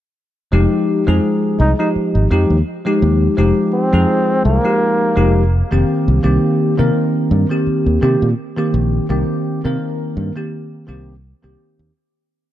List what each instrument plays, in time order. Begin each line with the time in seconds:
0.52 fingered electric bass F1, tine electric piano F3 G#3 D#4 G4
1.07 fingered electric bass F2, tine electric piano F3 G#3 D#4 G#4
1.60 fingered electric bass C2, flugelhorn D#4
1.79 tine electric piano F3 G#3 D#4 G4, flugelhorn D#4
1.96 muted fingered electric bass stroke
2.15 fingered electric bass G#1
2.30 fingered electric bass F2, tine electric piano F3 G#3 D#4 G4
2.50 fingered electric bass D#2
2.85 tine electric piano F3 G#3 D#4 G4
3.02 fingered electric bass D#2
3.37 fingered electric bass F1, tine electric piano F3 G#3 D#4 G4
3.73 flugelhorn C4
3.92 fingered electric bass F2, tine electric piano F3 G#3 D#4 G#4
4.45 fingered electric bass C2, flugelhorn A#3
4.64 tine electric piano F3 G#3 D#4 G4
5.16 fingered electric bass F1, tine electric piano F3 G#3 D#4 G4
5.71 fingered electric bass F1, tine electric piano D#3 A#3 C4 G4
6.08 fingered electric bass C2
6.23 fingered electric bass C2, tine electric piano D#3 A#3 C4 G4
6.78 fingered electric bass C3, tine electric piano D#3 A#3 C4 A#4
7.31 fingered electric bass G2
7.50 tine electric piano D#3 A#3 C4 G4
7.67 muted fingered electric bass stroke
7.86 fingered electric bass D#2
8.01 fingered electric bass C3, tine electric piano D#3 A#3 C4 G4
8.22 fingered electric bass A#2
8.57 tine electric piano D#3 A#3 C4 G4
8.74 fingered electric bass A#1
9.09 fingered electric bass C2, tine electric piano D#3 A#3 C4 G4
9.64 fingered electric bass C3, tine electric piano D#3 A#3 C4 A#4
10.17 fingered electric bass G2
10.35 tine electric piano D#3 A#3 C4 G4
10.87 fingered electric bass C2, tine electric piano D#3 A#3 C4 G4
11.42 fingered electric bass C2, tine electric piano D#3 A#3 C4 G4
11.79 fingered electric bass D#2